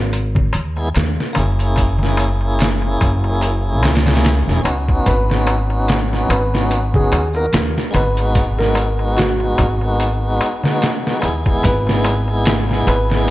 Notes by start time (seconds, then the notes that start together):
Already playing: G#1
0.13 closed hi-hat, darbuka tek
0.35 kick, darbuka dum
0.53 D#2, closed hi-hat, darbuka tek
0.76 G#3 B3 E4 G#4, darbuka tek
0.94 D#2, snare, closed hi-hat, darbuka tek
1.20 snare
1.33 F#1 A#3 C#4, darbuka tek, darbuka dum
1.37 E4 G#4, closed hi-hat
1.59 closed hi-hat, darbuka tek
1.76 kick, closed hi-hat, darbuka tek
1.98 darbuka tek, darbuka dum
2.03 snare
2.17 closed hi-hat, darbuka tek
2.41 darbuka tek
2.59 snare, closed hi-hat, darbuka tek
2.82 darbuka tek
3.01 F#1, kick, closed hi-hat, darbuka tek
3.24 darbuka tek
3.41 closed hi-hat, darbuka tek
3.83 C#2, snare, closed hi-hat, darbuka tek
3.95 snare, closed hi-hat
4.06 snare, closed hi-hat, darbuka tek, darbuka dum
4.15 snare, closed hi-hat
4.25 snare, closed hi-hat, darbuka tek
4.48 E1, snare
4.61 C#2 B3 C#4 D#4, darbuka tek
4.66 F#4, closed hi-hat
4.89 kick, darbuka tek
5.06 G#1 B4, kick, closed hi-hat, darbuka tek
5.30 snare, darbuka tek
5.47 closed hi-hat, darbuka tek
5.70 darbuka tek
5.88 snare, closed hi-hat, darbuka tek
6.13 snare, darbuka tek
6.29 G#1 B4, closed hi-hat, darbuka tek
6.54 snare, darbuka tek
6.71 closed hi-hat, darbuka tek
6.94 G#4, kick, darbuka dum
7.12 D#2, closed hi-hat, darbuka tek
7.33 A#3 B3 D#4 F#4 A#4, darbuka tek
7.53 D#2, snare, closed hi-hat, darbuka tek
7.78 snare
7.91 G#1 G#3 B3 D#4 B4, closed hi-hat, darbuka tek, darbuka dum
7.97 F#4
8.17 closed hi-hat, darbuka tek
8.35 kick, closed hi-hat, darbuka tek
8.58 A#4, snare, darbuka tek
8.75 closed hi-hat, darbuka tek
8.99 darbuka tek
9.17 F#4, snare, closed hi-hat, darbuka tek
9.40 darbuka tek
9.58 G#1, kick, closed hi-hat, darbuka tek
9.81 darbuka tek
10.00 closed hi-hat, darbuka tek
10.41 closed hi-hat, darbuka tek
10.63 snare, darbuka tek, darbuka dum
10.82 snare, closed hi-hat, darbuka tek
11.07 snare
11.19 D#2 G#3 B3 E4, darbuka tek
11.23 G#4, closed hi-hat
11.46 kick, darbuka tek
11.63 G#1 B4, kick, closed hi-hat, darbuka tek
11.87 snare, darbuka tek
12.04 closed hi-hat, darbuka tek
12.28 darbuka tek
12.46 snare, closed hi-hat, darbuka tek
12.69 snare, darbuka tek
12.87 G#1 B4, closed hi-hat, darbuka tek
13.10 snare, darbuka tek